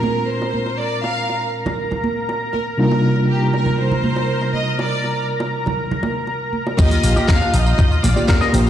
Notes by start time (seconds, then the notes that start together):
Already playing: A#2 G#3 C4 D4 F4 A#4 A#5
0.03 high bongo, high conga
0.28 C5
0.42 high bongo
0.54 high conga
0.66 high bongo
0.78 D5
1.03 F5, high bongo
1.30 high bongo
1.66 high bongo, low conga
1.91 high bongo, low conga
2.04 high conga
2.29 high bongo
2.53 A#4, high bongo, high conga
2.77 C3 G3 A#3 D4 D#4 F4 A#4
2.91 high bongo
3.16 high bongo
3.29 G4
3.54 A#4, high bongo
3.66 low conga
3.78 C5, high bongo
3.91 low conga
4.03 high conga
4.16 high bongo
4.42 high bongo
4.53 D#5, high conga
4.79 D5, high bongo
5.04 high bongo
5.40 high bongo
5.66 high bongo, low conga
5.91 low conga
6.03 high bongo, high conga
6.27 high bongo
6.53 high conga
6.67 high bongo
6.77 D#2 A#3 D#4 F4 G4 D#5 F5, kick, crash, tambourine, high bongo
6.91 F4, open hi-hat, tambourine, low conga
7.03 A#1 A#3, open hi-hat, tambourine
7.16 G4, muted slap bass stroke, tambourine, high bongo
7.28 D#2 A#4 F5, kick, snare, tambourine
7.41 D4, tambourine, high bongo
7.54 A#1 D#4 D#5, open hi-hat, tambourine
7.66 D#4, tambourine
7.78 D#2 D#4, kick, tambourine, high bongo
7.91 F4, tambourine
8.03 A#1 A#3 D5, open hi-hat, tambourine, high bongo, high conga
8.16 D#3 A#3 F4 G4 D5, muted slap bass stroke, tambourine
8.28 D#2 A#4, kick, snare, tambourine
8.41 D#5, snare, tambourine, high bongo
8.53 A#1 A#3 D#4 F4 G4 C5, open hi-hat, tambourine, high conga
8.66 D#4, high bongo